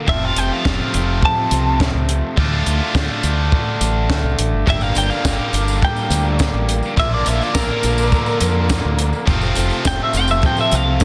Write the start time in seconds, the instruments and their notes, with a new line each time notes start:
Already playing: overdriven electric guitar F4
0.07 fingered electric bass F1, overdriven electric guitar F2 C3 F3 A3 C4, clean electric guitar E5, kick
0.11 overdriven electric guitar F4
0.25 clean electric guitar F5
0.36 fingered electric bass F1, clean electric guitar G5, closed hi-hat
0.53 clean electric guitar F5
0.65 fingered electric bass F1, kick, snare
0.94 fingered electric bass F1, closed hi-hat
1.23 clean electric guitar A5, kick
1.51 fingered electric bass C2, closed hi-hat
1.80 kick, snare
1.94 fingered electric bass C#2
2.09 closed hi-hat
2.37 fingered electric bass D2, overdriven electric guitar D3 A3 D4 F4, kick
2.66 fingered electric bass D2, closed hi-hat
2.95 fingered electric bass D2, kick, snare
3.23 fingered electric bass D2, closed hi-hat
3.52 kick
3.81 fingered electric bass A1, closed hi-hat
4.10 fingered electric bass D2, kick, snare
4.24 fingered electric bass C2
4.39 fingered electric bass A1, closed hi-hat
4.54 fingered electric bass G1
4.66 fingered electric bass G1, overdriven electric guitar G2 D3 G3 A#3 D4 G4, tonewheel organ D3 G3 A#3 F4 A#4, clean electric guitar E5, kick, tambourine
4.81 clean electric guitar F5, tambourine
4.95 fingered electric bass G1, clean electric guitar G5, closed hi-hat, tambourine
5.10 clean electric guitar F5, tambourine
5.25 fingered electric bass G1, kick, snare, tambourine
5.53 fingered electric bass G1, closed hi-hat, tambourine
5.68 tambourine
5.82 clean electric guitar G5, kick, tambourine
5.96 tambourine
6.10 fingered electric bass D2, closed hi-hat, tambourine
6.39 kick, snare, tambourine
6.53 fingered electric bass A1
6.69 closed hi-hat
6.83 tambourine
6.96 fingered electric bass A#1, overdriven electric guitar A#2 D3 A#3 D4, tonewheel organ F3, clean electric guitar E5, kick, tambourine
7.00 overdriven electric guitar F4
7.14 clean electric guitar D5
7.26 fingered electric bass A#1, clean electric guitar E5, closed hi-hat, tambourine
7.41 clean electric guitar D5, tambourine
7.55 fingered electric bass A#1, clean electric guitar A#4, kick, snare, tambourine
7.83 fingered electric bass A#1, closed hi-hat, tambourine
7.98 tambourine
8.12 kick, tambourine
8.26 tambourine
8.40 fingered electric bass F2, closed hi-hat, tambourine
8.69 kick, snare, tambourine
8.85 fingered electric bass D2
8.99 closed hi-hat
9.13 tambourine
9.26 fingered electric bass F1, overdriven electric guitar F2 C3 F3 A3 C4 F4, tonewheel organ C3 A3 A4, kick, tambourine
9.41 tambourine
9.55 fingered electric bass F1, closed hi-hat, tambourine
9.70 tambourine
9.85 fingered electric bass F1, clean electric guitar G5, kick, snare, tambourine
10.03 clean electric guitar E5
10.13 fingered electric bass F1, clean electric guitar G5, closed hi-hat, tambourine
10.28 clean electric guitar E5, tambourine
10.42 kick, tambourine
10.46 clean electric guitar G5
10.57 tambourine
10.61 clean electric guitar E5
10.71 fingered electric bass C2, clean electric guitar F5, closed hi-hat, tambourine
11.00 kick, tambourine